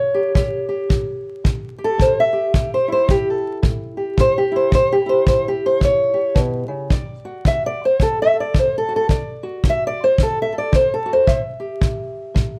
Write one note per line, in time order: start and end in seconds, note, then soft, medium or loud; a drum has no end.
0.00 0.31 A2 medium
0.00 0.14 G4 soft
0.00 1.46 C#5 medium
0.14 0.35 G4 soft
0.34 0.85 A2 medium
0.34 0.68 G4 medium
0.34 kick medium
0.69 1.78 G4 soft
0.89 1.40 A2 medium
0.89 kick medium
1.44 1.95 A2 medium
1.44 kick medium
1.78 2.32 G4 soft
1.84 2.01 A4 medium
1.98 2.49 A2 medium
1.98 2.18 C5 medium
1.98 kick medium
2.20 2.73 E5 loud
2.33 2.56 G4 soft
2.54 3.04 A2 medium
2.54 3.10 G4 medium
2.54 kick medium
2.74 2.91 C5 medium
2.88 4.50 E4 soft
2.92 3.09 C5 loud
3.08 3.58 A2 medium
3.08 3.27 G4 medium
3.08 kick medium
3.30 3.57 A4 medium
3.62 4.13 A2 medium
3.62 kick medium
3.97 4.36 G4 soft
4.17 4.68 A2 medium
4.17 4.37 C5 loud
4.17 kick medium
4.38 4.55 G4 medium
4.52 4.70 E4 soft
4.56 4.73 C5 medium
4.71 5.22 A2 medium
4.71 4.92 C5 loud
4.71 kick medium
4.92 5.10 G4 medium
5.06 6.88 E4 soft
5.06 5.27 C5 medium
5.26 5.77 A2 medium
5.26 5.46 C5 medium
5.26 kick medium
5.48 5.65 G4 medium
5.66 5.83 C5 medium
5.80 6.31 A2 medium
5.80 kick medium
5.84 6.38 C#5 loud
6.14 6.88 G4 soft
6.35 6.68 B2 medium
6.35 kick medium
6.68 6.90 C#3 medium
6.90 7.41 D3 medium
6.90 7.47 D5 medium
6.90 kick medium
7.25 8.87 F#4 soft
7.45 7.96 D3 medium
7.45 7.65 E5 loud
7.45 kick medium
7.66 7.83 D5 medium
7.85 8.02 C5 medium
8.00 8.50 D3 medium
8.00 8.19 A4 medium
8.00 kick medium
8.22 8.38 E5 loud
8.34 8.59 A4 soft
8.40 8.57 D5 medium
8.54 9.05 D3 medium
8.54 kick medium
8.59 8.75 C5 medium
8.78 8.94 A4 medium
8.89 9.07 F#4 soft
8.96 9.10 A4 loud
9.09 9.60 D3 medium
9.09 9.65 D5 medium
9.09 kick medium
9.43 11.05 F#4 soft
9.64 10.15 D3 medium
9.64 kick medium
9.70 9.85 E5 medium
9.87 10.03 D5 loud
10.04 10.20 C5 loud
10.18 10.69 D3 medium
10.18 kick medium
10.23 10.39 A4 loud
10.42 10.58 E5 loud
10.53 10.75 A4 soft
10.58 10.75 D5 medium
10.72 11.23 D3 medium
10.72 10.92 C5 medium
10.72 kick medium
10.94 11.11 A4 medium
11.06 11.25 F#4 medium
11.13 11.41 C5 medium
11.27 11.77 A2 medium
11.27 12.59 E5 medium
11.27 kick medium
11.60 12.59 G4 soft
11.81 12.32 A2 medium
11.81 kick medium
12.34 12.59 A2 medium
12.34 kick medium